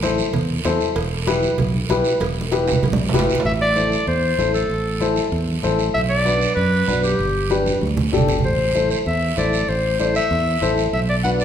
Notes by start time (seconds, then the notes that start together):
Already playing: A1
0.02 E4 A4 C5, cowbell, high conga, short guiro
0.18 short guiro
0.33 E2, cowbell, low conga, long guiro
0.64 E2 E4 A4 C5, cowbell, high conga, low timbale, short guiro
0.81 short guiro
0.96 E1, cowbell, long guiro
1.27 E4 G4 B4, cowbell, high conga, short guiro
1.43 short guiro
1.58 B1, cowbell, low conga, long guiro
1.74 high conga
1.89 B1 E4 G4 B4, cowbell, high conga, short guiro
2.04 short guiro
2.20 E1, cowbell, high conga, long guiro
2.41 high conga
2.51 E4 G4 B4, cowbell, short guiro
2.68 high timbale, short guiro
2.72 low conga
2.83 B1, cowbell, low conga, long guiro
2.93 low conga
3.09 low timbale
3.14 G1 E4 G4 B4, cowbell, low conga, short guiro
3.19 low timbale
3.30 short guiro
3.35 low conga
3.40 low timbale
3.45 A1 E5, long guiro
3.61 D5
3.75 E4 A4 C5, high conga, short guiro
3.92 short guiro
4.07 E2 C5, long guiro
4.38 A1 E4 A4 C5, high conga, short guiro
4.54 A4, short guiro
4.69 A1, long guiro
5.00 E4 A4 C5, high conga, short guiro
5.16 short guiro
5.32 E2, long guiro
5.48 high conga
5.63 A1 E4 A4 C5, high conga, short guiro
5.79 short guiro
5.94 B1 E5, long guiro
6.09 D5
6.25 D4 F#4 B4, high conga, short guiro
6.42 short guiro
6.56 F#2 B4, long guiro
6.87 B1 D4 F#4 B4, high conga, short guiro
7.03 G4, short guiro
7.19 G1, long guiro
7.50 D4 G4 B4, high conga, short guiro
7.66 high conga, short guiro
7.76 high conga
7.81 D2, long guiro
7.87 high conga
7.97 low conga
8.12 G1 D4 G4 A4, short guiro
8.18 low conga
8.28 low conga, short guiro
8.39 low conga
8.44 A1 C5, long guiro
8.75 E4 A4 C5, high conga, short guiro
8.91 C5, short guiro
9.06 E2 E5, long guiro
9.37 A1 E4 A4 C5 D5, high conga, short guiro
9.53 short guiro
9.69 A1 C5, long guiro
9.99 E4 A4 C5 D5, high conga, short guiro
10.15 E5, short guiro
10.31 E2, long guiro
10.62 A1 E4 A4 C5, high conga, short guiro
10.78 short guiro
10.93 B1 E5, long guiro
11.09 D5
11.24 D4 F#4 B4 F#5, high conga, short guiro
11.40 D5, short guiro